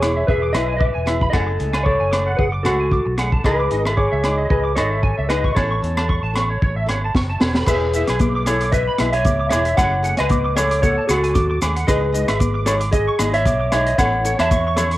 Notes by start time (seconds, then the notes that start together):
Already playing: E1 G#4 C#5
0.01 B3 E4 G#4 D6, cross-stick, closed hi-hat, low agogo
0.16 E5
0.27 E1 G#4 B4 E5, kick
0.42 D6
0.53 B1 E4 G#4 B4 D#5 E5, muted nylon-string guitar stroke, cross-stick, closed hi-hat, low agogo
0.68 G#5
0.77 B4 E5 D6, kick
0.94 E1 G#5
1.06 B3 E4 G#4 E5, cross-stick, closed hi-hat, low agogo
1.21 B5, kick
1.30 F#1 F#3 A3 A4 D#5 F#5, kick, cross-stick, low agogo
1.35 C#4 G#4
1.47 muted clean electric guitar stroke
1.59 C#2 A3 C#4 G#4, closed hi-hat
1.73 G#5, cross-stick, low agogo
1.83 A4 C#5 D6, kick
2.00 F#1 G#5
2.11 A3 C#4 G#4 D6, cross-stick, closed hi-hat, low agogo
2.26 F#5
2.37 F#1 G#4 B4 F#5, kick
2.52 D6
2.63 C#2 C#4 F#4 G#4 A4 F#5, cross-stick, closed hi-hat, low agogo
2.69 A3
2.80 G#5
2.92 D6, kick
3.06 B1, muted clean electric guitar stroke
3.18 A3 C#4 G#4 F#5, cross-stick, closed hi-hat, low agogo
3.32 A5, kick
3.44 C#2 E3 G#3 D#4 G#4 B4 D#5, kick, cross-stick, low agogo
3.59 D6
3.71 G#1 G#3 D#4 G#4 D#5, closed hi-hat
3.86 E5, cross-stick, low agogo
3.97 G#4 C#5 D6, kick
4.12 C#2 E5
4.24 G#3 D#4 G#4 D6, cross-stick, closed hi-hat, low agogo
4.38 D#5
4.50 C#2 G#4 B4 D#5, kick
4.64 D6
4.76 G#1 G#3 D#4 G#4 A4 C#5 D#5, cross-stick, closed hi-hat, low agogo
4.91 E5
5.03 G#5, kick
5.18 C#2 E5
5.29 G#3 D#4 G#4 B4 D#5, cross-stick, closed hi-hat, low agogo
5.44 C#6, kick
5.55 A1 E3 B3 C#4 A4 C#5, kick, cross-stick, low agogo
5.71 C#6
5.82 E2 B3 C#4 A4, closed hi-hat
5.97 A5, cross-stick, low agogo
6.09 C#6, kick
6.23 A1 A5
6.34 B3 C#4 A4 C#6, cross-stick, closed hi-hat, low agogo
6.50 C#5
6.62 A1 C#5, kick
6.76 E5
6.86 G#1 B3 C#4 A4 C#5, cross-stick, closed hi-hat, low agogo
7.04 A5
7.15 F#1 C#6, kick, snare
7.29 A5
7.40 E1 B3 C#4 A4 C#5, snare, low agogo
7.55 B5, snare
7.66 E1 E3 B3 E4 G#4 B4 E5, kick, cross-stick, crash, muted conga, low agogo, maracas
7.93 B3 E4 G#4 E5, closed hi-hat, muted conga, maracas
8.07 B1 G#5, cross-stick, closed hi-hat, low agogo, maracas
8.19 D6, kick, closed hi-hat, high conga, maracas
8.35 D6
8.46 B3 E4 G#4 A4 C#5 D6, cross-stick, closed hi-hat, low agogo, maracas
8.61 D6, closed hi-hat, maracas
8.72 B4 D#5 E5, kick, closed hi-hat, muted conga, maracas
8.88 B5
8.98 B1 B3 E4 G#4 E5, cross-stick, closed hi-hat, high conga, low agogo
9.12 C#5 E5 G#5, closed hi-hat, maracas
9.24 C#2 D6, kick, closed hi-hat, high conga, maracas
9.39 D6
9.49 E1 E4 G#4 C#5 E5 D6, cross-stick, closed hi-hat, muted conga, low agogo, maracas
9.54 B3
9.65 E5, closed hi-hat, maracas
9.77 F#1 F#3 A3 C#4 G#4 C#5 F#5, kick, cross-stick, closed hi-hat, muted conga, low agogo, maracas
10.03 A3 C#4 G#4 F#5, closed hi-hat, muted conga, maracas
10.17 C#2 B4 D#5 G#5, cross-stick, closed hi-hat, low agogo
10.29 D6, kick, closed hi-hat, high conga, maracas
10.44 D6
10.56 A3 C#4 G#4 A4 C#5 D6, cross-stick, closed hi-hat, low conga, low agogo, maracas
10.70 D6, closed hi-hat, maracas
10.82 A4 C#5 F#5, kick, closed hi-hat, muted conga, high conga, maracas
10.98 A5
11.08 C#2 C#4 F#4 G#4 A4 F#5, cross-stick, closed hi-hat, low agogo, maracas
11.12 A3
11.23 G#5, closed hi-hat, maracas
11.34 D#2 D6, kick, closed hi-hat, high conga, low conga, maracas
11.50 D6
11.61 D#2 A3 C#4 G#4 D6, cross-stick, closed hi-hat, muted conga, low agogo, maracas
11.76 F#5, closed hi-hat, maracas
11.86 C#2 E3 G#3 D#4 G#4 B4 D#5, kick, cross-stick, closed hi-hat, muted conga, low agogo, maracas
12.12 G#3 D#4 G#4 D#5, closed hi-hat, muted conga, maracas
12.28 G#1 E5, cross-stick, closed hi-hat, low agogo, maracas
12.40 D6, kick, closed hi-hat, high conga, maracas
12.54 D6
12.66 G#3 D#4 G#4 A4 C#5 D6, cross-stick, closed hi-hat, low agogo, maracas
12.80 D6, closed hi-hat, maracas
12.91 G#4 D#5, kick, closed hi-hat, muted conga, maracas
13.07 C#6
13.19 G#1 G#3 D#4 G#4 D#5, cross-stick, closed hi-hat, high conga, low agogo, maracas
13.34 C#5 E5, closed hi-hat, maracas
13.45 B1 D6, kick, closed hi-hat, high conga, maracas
13.60 D6
13.72 B1 G#3 D#4 G#4 C#5 E5 D6, cross-stick, closed hi-hat, muted conga, low agogo, maracas
13.86 D#5, closed hi-hat, maracas
13.98 A1 E3 B3 C#4 A4 C#5 F#5, kick, cross-stick, closed hi-hat, muted conga, low agogo, maracas
14.25 B3 C#4 A4 C#5, closed hi-hat, muted conga, maracas
14.39 E2 C#5 E5 A5, cross-stick, closed hi-hat, low agogo, maracas
14.51 C#6, kick, closed hi-hat, high conga, maracas
14.67 C#6
14.76 B3 C#4 A4 C#5 C#6, cross-stick, closed hi-hat, low conga, low agogo, maracas
14.91 C#6, closed hi-hat, maracas